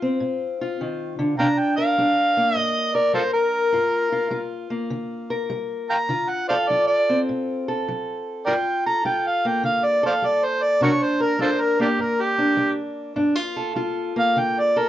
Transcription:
Already playing: steel-string acoustic guitar F#3 F4
0.02 steel-string acoustic guitar C4
0.20 steel-string acoustic guitar A2
0.61 steel-string acoustic guitar F4
0.81 steel-string acoustic guitar D#3
1.19 steel-string acoustic guitar D3
1.39 steel-string acoustic guitar C3 D4, harmonica F5 G5 A#5
1.58 harmonica G5
1.76 steel-string acoustic guitar A#4, harmonica F5
1.98 steel-string acoustic guitar G3 D4
2.37 steel-string acoustic guitar A#3
2.55 steel-string acoustic guitar G2, harmonica D#5
2.95 steel-string acoustic guitar A#4, harmonica D5
3.13 steel-string acoustic guitar G3, harmonica F4 A4 C5
3.33 harmonica A#4
3.73 steel-string acoustic guitar G2 F4
4.12 steel-string acoustic guitar F4
4.30 steel-string acoustic guitar G3 F4
4.70 steel-string acoustic guitar A#3
4.90 steel-string acoustic guitar D3
5.30 steel-string acoustic guitar A#4
5.50 steel-string acoustic guitar G3
5.90 harmonica F5 G5 A#5
6.09 steel-string acoustic guitar D3 F4
6.29 harmonica F#5
6.49 steel-string acoustic guitar A4, harmonica C5 D5 F5
6.68 steel-string acoustic guitar F#3 F4, harmonica D5
6.87 harmonica D5
7.09 steel-string acoustic guitar C4
7.29 steel-string acoustic guitar A2
7.68 steel-string acoustic guitar A4
7.88 steel-string acoustic guitar F#3
8.46 steel-string acoustic guitar G2 F4, harmonica A#4 D5 G5
8.86 steel-string acoustic guitar A4, harmonica A#5
9.05 steel-string acoustic guitar G3 F4, harmonica G5
9.27 harmonica F5
9.45 steel-string acoustic guitar A#3, harmonica G5
9.63 steel-string acoustic guitar D3, harmonica F5
9.84 harmonica D5
10.03 steel-string acoustic guitar A4, harmonica C5 D5 F5
10.22 steel-string acoustic guitar G3, harmonica D5
10.44 harmonica C5
10.63 harmonica D5
10.81 steel-string acoustic guitar C3 D4, harmonica F#4 A#4 C#5
11.02 harmonica C5
11.20 steel-string acoustic guitar A#4, harmonica A#4
11.39 steel-string acoustic guitar G3 D4, harmonica F4 A4 C5
11.61 harmonica A#4
11.80 steel-string acoustic guitar A#3, harmonica A#3 D4 G4
11.99 steel-string acoustic guitar G2, harmonica A#4
12.21 harmonica G4
12.38 steel-string acoustic guitar D4
12.57 steel-string acoustic guitar G3
13.16 steel-string acoustic guitar G2 D4
13.35 steel-string acoustic guitar F4
13.56 steel-string acoustic guitar A4
13.76 steel-string acoustic guitar G3 F4
14.16 steel-string acoustic guitar A#3, harmonica F5
14.36 steel-string acoustic guitar D3, harmonica G5
14.59 harmonica D5
14.76 steel-string acoustic guitar A4, harmonica A#4

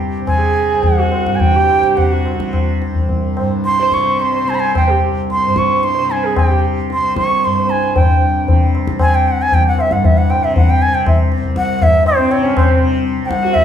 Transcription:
Already playing: tanpura C2 G2 C3, sarangi G4
0.21 tanpura C3
0.27 bansuri G#5, tabla na, tabla ge
0.41 sarangi G#4
0.74 tanpura C2
0.83 bansuri F#5, tabla tin, tabla ge
0.99 sarangi F#4
1.12 tabla na
1.26 tanpura G2, tabla ke
1.35 bansuri G#5
1.40 bansuri G5, tabla tin, tabla ge
1.56 sarangi G4
1.69 tabla na
1.81 tanpura C3, tabla ke
1.97 bansuri F#5, tabla tin, tabla ge
2.12 sarangi F#4
2.25 tabla na
2.34 tanpura C3
2.40 tabla ke
2.53 tabla na, tabla ge
2.82 tabla te
2.86 tanpura C2
2.95 tabla ge
3.09 tabla tin, tabla ge
3.37 tanpura G2, tabla na
3.64 bansuri C6, tabla te
3.79 sarangi C5
3.92 tanpura C3, bansuri C#6, tabla ke
4.20 bansuri C6, tabla te
4.35 sarangi C5
4.45 tanpura C3, tabla te
4.50 bansuri G#5
4.55 bansuri B5
4.60 bansuri G#5
4.75 bansuri G5, tabla na, tabla ge
4.90 sarangi G4
4.96 tanpura C2
5.30 bansuri C6, tabla te
5.44 tanpura G2, sarangi C5
5.56 bansuri C#6, tabla ke
5.83 bansuri C6, tabla te
5.96 tanpura C3, sarangi C5
6.10 bansuri G#5, tabla te
6.25 sarangi G#4
6.36 bansuri G5, tabla na, tabla ge
6.46 tanpura C3
6.51 sarangi G4
6.90 bansuri C6, tabla te
6.96 tanpura C2
7.04 sarangi C5
7.16 bansuri C#6, tabla ke
7.43 tanpura G2, bansuri C6, tabla te
7.58 sarangi C5
7.69 bansuri G#5, tabla te
7.95 tanpura G2, bansuri G5, tabla tin, tabla ge
8.45 tanpura C3, tabla tin, tabla ge
8.75 tabla na
8.87 tabla ke
8.94 tanpura C3
8.99 bansuri G#5, tabla na, tabla ge
9.15 bansuri G5
9.28 bansuri F#5
9.42 tanpura C2, bansuri G#5
9.52 bansuri G5, tabla tin, tabla ge
9.68 bansuri F#5
9.79 bansuri E5, tabla na
9.91 tanpura G2, bansuri F#5, tabla ke
10.04 bansuri E5, tabla tin, tabla ge
10.18 bansuri F#5
10.30 bansuri G5, tabla na
10.39 tanpura C3
10.44 bansuri E5
10.56 bansuri F#5, tabla tin, tabla ge
10.70 bansuri G5
10.82 bansuri G#5
10.88 tanpura C3
10.94 bansuri G5
11.07 bansuri E5, tabla na, tabla ge
11.32 tabla te
11.36 tanpura C2
11.44 tabla ge
11.56 bansuri F#5, tabla ke
11.81 tanpura G2, bansuri E5, tabla tin, tabla ge
12.06 bansuri C5, tabla na
12.19 sarangi C4
12.31 tanpura C3, bansuri C#5, tabla na
12.44 sarangi C#4
12.57 bansuri C5, tabla na, tabla ge
12.69 sarangi C4
12.78 tanpura C3
13.22 tanpura C2, bansuri G5
13.29 bansuri F#5, tabla ke
13.43 sarangi F#4
13.54 bansuri E5, tabla tin, tabla ge

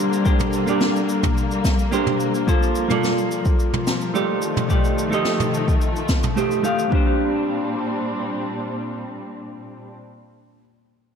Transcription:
Already playing: string section D3 G3 A#3, clean electric guitar A#3 D4 G4 C5
0.13 cabasa
0.25 clean electric guitar A#3 D4 G4 C5, kick, cabasa
0.40 mid tom, cabasa
0.53 cabasa
0.66 clean electric guitar A#3 D4 G4 D5, cabasa
0.81 snare, cabasa
0.96 cabasa
1.09 cabasa
1.23 kick, mid tom, cabasa
1.38 cabasa
1.51 cabasa
1.64 kick, snare, cabasa
1.79 cabasa
1.91 clean electric guitar A#3 D4 G4 C5, cabasa
2.07 mid tom
2.20 cabasa
2.35 cabasa
2.47 string section F3, clean electric guitar A#3 F4 A4 C5, kick, cabasa
2.63 cabasa
2.75 cabasa
2.88 clean electric guitar A#3 F4 A4 D5, mid tom, cabasa
3.04 snare, cabasa
3.18 cabasa
3.31 cabasa
3.45 kick, cabasa
3.60 cabasa
3.73 mid tom
3.87 snare, cabasa
4.01 cabasa
4.14 clean electric guitar A3 D#4 G4 D5, cabasa
4.42 string section D#3 A3, cabasa
4.57 mid tom, cabasa
4.69 clean electric guitar A3 D#4 G4 D5, kick, cabasa
4.85 cabasa
4.98 cabasa
5.10 clean electric guitar A3 D#4 G4 D#5, cabasa
5.25 snare, cabasa
5.40 mid tom, cabasa
5.54 cabasa
5.68 kick, cabasa
5.81 cabasa
5.96 cabasa
6.09 kick, snare, cabasa
6.23 mid tom, cabasa
6.36 clean electric guitar A3 D#4 G4 C5, cabasa
6.51 cabasa
6.63 clean electric guitar A3 D#4 G4 F5, cabasa
6.79 cabasa
6.89 string section A#2 G3 C4 D4, clean electric guitar A#3 D4 G4, kick
6.95 clean electric guitar C5

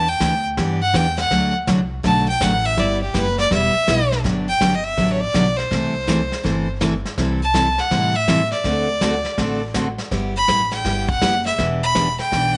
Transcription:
Already playing: upright bass E2, fiddle A5
0.09 fiddle G5
0.20 upright bass D2, steel-string acoustic guitar E3 B3 D4 G4, kick, snare, hi-hat pedal
0.57 upright bass G2, steel-string acoustic guitar E3 B3 D4 G4, brush sweep, kick, snare
0.82 fiddle F#5
0.93 upright bass E2, steel-string acoustic guitar E3 B3 D4 G4, fiddle G5, kick, snare, hi-hat pedal
1.18 fiddle F#5, snare
1.31 upright bass D2, steel-string acoustic guitar D3 F#3 A3 D4 F#4, brush sweep, kick, snare
1.67 upright bass C2, steel-string acoustic guitar D3 F#3 A3 D4 F#4, kick, snare, hi-hat pedal
2.03 upright bass B1, steel-string acoustic guitar D3 F#3 A3 D4 F#4, fiddle A5, brush sweep, kick, snare
2.29 fiddle G5
2.40 upright bass A1, steel-string acoustic guitar D3 F#3 A3 D4 F#4, fiddle F#5, kick, snare, hi-hat pedal
2.65 fiddle E5
2.77 upright bass G1, steel-string acoustic guitar G3 B3 E4 G4, fiddle D5, brush sweep, kick, snare
3.03 fiddle G4
3.14 upright bass F#1, steel-string acoustic guitar G3 B3 E4 G4, fiddle B4, kick, snare, hi-hat pedal
3.38 fiddle D5, snare
3.50 upright bass E1, steel-string acoustic guitar G3 B3 E4 G4, fiddle E5, brush sweep, kick, snare
3.75 muted upright bass stroke
3.87 upright bass B1, steel-string acoustic guitar G3 B3 E4 G4, kick, snare, hi-hat pedal
4.12 snare
4.24 upright bass G1, steel-string acoustic guitar D3 F#3 B3 D4 G4, brush sweep, kick, snare
4.49 fiddle G5
4.61 upright bass G1, steel-string acoustic guitar D3 F#3 B3 D4 G4, kick, snare, hi-hat pedal
4.76 fiddle D#5
4.84 fiddle E5
4.97 upright bass A1, steel-string acoustic guitar D3 F#3 B3 D4 G4, brush sweep, kick, snare
5.13 fiddle C#5
5.20 fiddle D5
5.34 upright bass B1, steel-string acoustic guitar D3 F#3 B3 D4 G4, kick, snare, hi-hat pedal
5.57 fiddle C5, snare
5.71 upright bass C2, steel-string acoustic guitar C3 E3 A3 E4 A4, brush sweep, kick, snare
6.07 steel-string acoustic guitar C3 E3 A3 E4 A4, kick, snare, hi-hat pedal
6.32 snare
6.43 upright bass G1, steel-string acoustic guitar C3 E3 A3 E4 A4, brush sweep, kick, snare
6.81 steel-string acoustic guitar C3 E3 A3 E4 A4, kick, snare, hi-hat pedal
7.05 snare
7.18 upright bass C2, steel-string acoustic guitar C3 E3 G3 C4 E4 A4, brush sweep, kick, snare
7.43 fiddle A5
7.54 steel-string acoustic guitar C3 E3 G3 C4 E4 A4, kick, snare, hi-hat pedal
7.78 fiddle F#5, snare
7.91 upright bass A2, steel-string acoustic guitar C3 E3 G3 C4 E4 A4, brush sweep, kick, snare
8.16 fiddle E5
8.28 steel-string acoustic guitar C3 E3 G3 C4 E4 A4, kick, snare, hi-hat pedal
8.52 fiddle D5, snare
8.64 upright bass D2, steel-string acoustic guitar D3 A3 C4 F#4 A4, brush sweep, kick, snare
9.01 steel-string acoustic guitar D3 A3 C4 F#4 A4, kick, snare, hi-hat pedal
9.25 snare
9.38 upright bass A1, steel-string acoustic guitar D3 A3 C4 F#4 A4, brush sweep, kick, snare
9.74 steel-string acoustic guitar D3 A3 C4 F#4 A4, kick, snare, hi-hat pedal
9.98 snare
10.11 upright bass G1, steel-string acoustic guitar G3 B3 E4 G4, brush sweep, kick, snare
10.37 fiddle B5
10.47 upright bass A1, steel-string acoustic guitar G3 B3 E4 G4, kick, snare, hi-hat pedal
10.72 fiddle G5, snare
10.84 upright bass G1, steel-string acoustic guitar G3 B3 E4 G4, brush sweep, kick, snare
11.09 fiddle F#5, kick
11.21 upright bass F#1, steel-string acoustic guitar G3 B3 E4 G4, kick, snare, hi-hat pedal
11.46 fiddle E5, snare
11.58 upright bass E1, steel-string acoustic guitar E3 B3 D4 G4, brush sweep, kick, snare
11.83 fiddle B5
11.95 steel-string acoustic guitar E3 B3 D4 G4, kick, snare, hi-hat pedal
12.19 fiddle G5, snare
12.32 upright bass B1, steel-string acoustic guitar E3 B3 D4 G4, brush sweep, kick, snare

